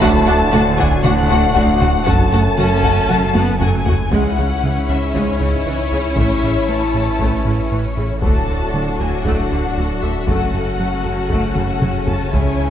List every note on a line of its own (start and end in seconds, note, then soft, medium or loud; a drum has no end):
0.00 2.09 D1 medium
0.00 0.17 D2 loud
0.00 0.47 D2 loud
0.00 2.03 A2 loud
0.00 2.03 A3 loud
0.00 0.09 A3 medium
0.00 0.09 D4 medium
0.00 2.03 D4 loud
0.00 0.09 F#4 medium
0.00 3.83 F#4 loud
0.00 0.09 F#5 medium
0.00 0.79 A5 loud
0.00 taiko loud
0.26 0.43 D2 medium
0.26 0.35 A3 medium
0.26 0.35 D4 medium
0.26 0.34 F#4 medium
0.26 0.35 F#5 medium
0.52 0.98 D2 loud
0.52 0.98 D2 medium
0.52 0.69 D3 medium
0.52 0.61 A3 medium
0.52 0.61 D4 medium
0.52 0.60 F#4 medium
0.52 0.60 F#5 medium
0.52 taiko mid medium
0.78 0.94 D2 loud
0.78 0.87 A3 medium
0.78 0.87 D4 medium
0.78 0.86 F#4 medium
0.78 0.86 F#5 medium
0.78 1.04 G#5 loud
0.78 taiko medium
1.04 1.50 D2 loud
1.04 1.20 D3 medium
1.04 1.12 A3 medium
1.04 1.12 D4 medium
1.04 1.12 F#4 medium
1.04 1.12 F#5 medium
1.04 2.05 F#5 loud
1.04 taiko mid medium
1.29 1.45 D2 medium
1.29 1.37 A3 medium
1.29 1.37 D4 medium
1.29 1.38 F#4 medium
1.29 1.38 F#5 medium
1.29 taiko mid medium
1.55 2.01 D2 medium
1.55 1.71 D2 loud
1.55 1.63 A3 medium
1.55 1.63 D4 medium
1.55 1.63 F#4 medium
1.55 1.63 F#5 medium
1.55 taiko medium
1.81 1.97 D2 medium
1.81 1.89 A3 medium
1.81 1.89 D4 medium
1.81 1.89 F#4 medium
1.81 1.89 F#5 medium
1.81 taiko mid medium
2.05 2.52 F#1 medium
2.05 4.12 F#1 medium
2.05 2.22 F#2 loud
2.05 3.83 F#2 medium
2.05 2.52 F#2 medium
2.05 2.15 A3 medium
2.05 3.83 A3 medium
2.05 2.15 C#4 medium
2.05 3.83 C#4 medium
2.05 2.13 F#4 medium
2.05 2.13 F#5 medium
2.05 3.61 A5 loud
2.05 taiko loud
2.32 2.48 F#2 medium
2.32 2.40 A3 medium
2.32 2.41 C#4 medium
2.32 2.40 F#4 medium
2.32 2.40 F#5 medium
2.58 3.03 F#1 medium
2.58 3.03 F#2 medium
2.58 2.74 F#3 medium
2.58 3.31 C#4 medium
2.58 2.66 F#4 medium
2.58 2.66 F#5 medium
2.58 taiko mid medium
2.83 2.99 F#2 loud
2.83 2.92 F#4 medium
2.83 2.92 F#5 medium
2.83 taiko medium
3.09 3.55 F#1 medium
3.09 3.54 F#2 medium
3.09 3.25 F#3 medium
3.09 3.17 F#4 medium
3.09 3.17 F#5 medium
3.09 taiko mid medium
3.35 3.51 F#2 medium
3.35 3.60 B3 medium
3.35 3.43 F#4 medium
3.35 3.43 F#5 medium
3.35 taiko high medium
3.60 4.06 F#1 medium
3.60 4.06 F#2 medium
3.60 3.77 F#2 loud
3.60 4.11 A3 medium
3.60 3.69 F#4 medium
3.60 3.68 F#5 medium
3.60 4.08 G#5 medium
3.60 taiko low-mid medium
3.86 4.02 F#2 medium
3.86 3.95 F#4 medium
3.86 3.95 F#5 medium
3.86 taiko low medium
4.11 6.19 C#2 medium
4.11 4.20 C#2 medium
4.11 4.28 C#2 medium
4.11 6.13 G#2 medium
4.11 4.20 C#3 medium
4.11 6.13 G#3 medium
4.11 4.36 G#3 medium
4.11 8.18 C#4 medium
4.11 8.18 E4 medium
4.11 8.18 C#5 medium
4.11 4.89 F#5 loud
4.11 taiko medium
4.38 4.46 C#2 soft
4.38 4.53 C#2 medium
4.38 4.46 C#3 medium
4.38 4.46 C#3 soft
4.62 4.72 C#2 medium
4.62 4.70 C#3 medium
4.62 4.79 C#3 medium
4.62 4.72 E3 soft
4.88 5.04 C#2 medium
4.88 4.97 C#2 medium
4.88 4.96 C#3 medium
4.88 4.98 C#3 medium
4.88 5.15 E5 medium
5.14 5.23 C#2 medium
5.14 5.30 C#2 medium
5.14 5.22 C#3 medium
5.14 5.39 G#3 medium
5.14 5.65 C#5 medium
5.14 taiko medium
5.40 5.56 C#2 medium
5.40 5.49 C#2 medium
5.40 5.48 C#3 medium
5.40 5.49 C#3 medium
5.40 taiko low-mid soft
5.65 5.81 C#2 medium
5.65 5.74 C#2 medium
5.65 5.73 C#3 medium
5.65 5.74 E3 medium
5.65 6.16 C#5 medium
5.91 6.07 C#2 medium
5.91 6.00 C#2 medium
5.91 5.99 C#3 medium
5.91 6.00 C#3 medium
6.17 6.25 A1 medium
6.17 8.24 A1 medium
6.17 10.23 A2 medium
6.17 6.25 A2 medium
6.17 6.33 A2 medium
6.17 8.18 E3 medium
6.17 6.41 A3 medium
6.17 6.67 E5 medium
6.17 taiko medium
6.42 6.51 A1 soft
6.42 6.50 A2 soft
6.42 6.58 A2 medium
6.42 6.51 C#3 soft
6.68 6.77 A1 soft
6.68 6.76 A2 soft
6.68 6.77 E3 medium
6.68 6.84 A3 medium
6.68 7.71 A5 medium
6.94 7.02 A1 medium
6.94 7.02 A2 soft
6.94 7.10 A2 medium
6.94 7.03 C#3 medium
7.19 7.28 A1 medium
7.19 7.27 A2 medium
7.19 7.35 A2 medium
7.19 7.44 A3 medium
7.19 taiko medium
7.45 7.54 A1 soft
7.45 7.61 A2 medium
7.45 7.53 A2 medium
7.45 7.54 C#3 medium
7.45 taiko low-mid soft
7.71 7.80 A1 medium
7.71 7.79 A2 soft
7.71 7.87 A2 medium
7.71 7.80 E3 soft
7.96 8.05 A1 soft
7.96 8.04 A2 medium
7.96 8.12 A2 medium
7.96 8.06 C#3 medium
8.22 10.29 D1 medium
8.22 8.30 D2 medium
8.22 8.38 D2 medium
8.22 8.31 D2 medium
8.22 12.15 F#3 medium
8.22 12.15 A3 medium
8.22 8.47 A3 medium
8.22 10.24 D4 medium
8.22 12.29 F#4 medium
8.22 12.29 A4 medium
8.22 8.95 A5 medium
8.22 taiko medium
8.48 8.56 D2 soft
8.48 8.64 D2 medium
8.48 8.57 D2 soft
8.48 8.57 D3 soft
8.74 8.82 D2 soft
8.74 8.89 D3 medium
8.74 8.83 F#3 soft
8.99 9.07 D2 medium
8.99 9.15 D2 medium
8.99 9.08 D2 medium
8.99 9.08 D3 soft
8.99 9.25 G#5 medium
9.25 9.33 D2 medium
9.25 9.41 D2 medium
9.25 9.49 A3 medium
9.25 10.02 F#5 medium
9.25 taiko medium
9.51 9.59 D2 medium
9.51 9.59 D2 soft
9.51 9.66 D2 medium
9.51 9.60 D3 medium
9.51 taiko low-mid soft
9.77 9.85 D2 medium
9.77 9.92 D2 medium
9.77 9.85 F#3 medium
10.02 10.10 D2 medium
10.02 10.18 D2 medium
10.02 10.10 D3 medium
10.02 10.28 E5 medium
10.26 12.34 F#1 medium
10.26 10.36 F#1 medium
10.26 10.43 F#2 medium
10.26 10.36 F#2 medium
10.26 12.70 C#3 medium
10.26 10.52 A3 medium
10.26 12.70 C#4 medium
10.26 12.04 F#5 loud
10.26 taiko medium
10.53 10.62 F#1 soft
10.53 10.61 F#2 medium
10.53 10.69 F#2 medium
10.53 10.61 C#3 soft
10.79 10.87 F#1 soft
10.79 10.87 F#2 soft
10.79 10.87 F#3 medium
10.79 10.95 F#3 medium
11.05 11.13 F#1 medium
11.05 11.13 F#2 medium
11.05 11.20 F#2 medium
11.05 11.13 C#3 soft
11.30 11.39 F#1 medium
11.30 11.38 F#2 medium
11.30 11.46 F#2 medium
11.30 11.54 A3 medium
11.30 taiko medium
11.56 11.65 F#1 medium
11.56 11.64 F#2 medium
11.56 11.72 F#2 medium
11.56 11.64 C#3 medium
11.56 taiko mid medium
11.81 11.90 F#1 medium
11.81 11.90 F#2 medium
11.81 11.97 F#2 medium
11.81 11.89 F#3 medium
11.81 taiko mid medium
12.07 12.16 F#1 soft
12.07 12.15 F#2 medium
12.07 12.23 F#2 medium
12.07 12.15 C#3 medium
12.07 12.33 A5 medium
12.07 taiko low medium
12.32 12.70 C#2 medium
12.32 12.49 C#2 medium
12.32 12.42 C#2 medium
12.32 12.41 C#3 medium
12.32 12.70 E3 medium
12.32 12.70 G#3 medium
12.32 12.57 G#3 medium
12.32 12.70 E4 medium
12.32 12.70 C#5 medium
12.32 12.70 G#5 medium
12.32 taiko medium
12.58 12.67 C#2 soft
12.58 12.70 C#2 medium
12.58 12.66 C#3 soft
12.58 12.67 C#3 medium